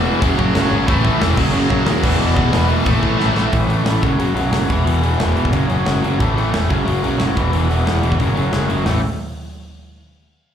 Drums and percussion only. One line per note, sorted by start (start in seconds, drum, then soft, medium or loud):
0.22 kick loud
0.22 open hi-hat medium
0.39 kick medium
0.55 snare loud
0.55 open hi-hat medium
0.88 kick loud
0.88 open hi-hat medium
1.05 kick loud
1.22 snare loud
1.22 open hi-hat medium
1.37 kick loud
1.37 crash loud
1.70 kick medium
1.86 snare loud
1.86 open hi-hat medium
2.04 kick loud
2.04 crash loud
2.37 kick medium
2.53 snare loud
2.53 open hi-hat medium
2.86 kick loud
2.86 open hi-hat medium
3.03 kick medium
3.20 snare medium
3.37 snare loud
3.53 kick loud
3.53 open hi-hat medium
3.70 open hi-hat medium
3.86 snare loud
3.86 open hi-hat medium
4.03 kick loud
4.03 open hi-hat soft
4.20 open hi-hat medium
4.37 open hi-hat medium
4.53 snare loud
4.53 open hi-hat medium
4.70 kick medium
4.70 open hi-hat medium
4.87 open hi-hat medium
5.04 open hi-hat medium
5.20 snare loud
5.20 open hi-hat medium
5.37 open hi-hat soft
5.45 kick medium
5.53 kick loud
5.53 open hi-hat medium
5.70 open hi-hat soft
5.86 snare loud
5.86 open hi-hat medium
6.04 open hi-hat medium
6.20 kick loud
6.20 open hi-hat medium
6.38 open hi-hat soft
6.54 snare loud
6.54 open hi-hat medium
6.70 kick medium
6.70 open hi-hat soft
6.88 open hi-hat medium
7.04 open hi-hat medium
7.20 snare loud
7.20 open hi-hat medium
7.37 kick loud
7.37 open hi-hat medium
7.53 open hi-hat medium
7.71 open hi-hat medium
7.87 snare loud
7.87 open hi-hat medium
8.03 open hi-hat soft
8.12 kick medium
8.20 kick medium
8.20 open hi-hat medium
8.37 open hi-hat soft
8.53 snare medium
8.53 open hi-hat medium
8.70 open hi-hat soft
8.86 snare medium
8.86 floor tom medium
8.86 open hi-hat medium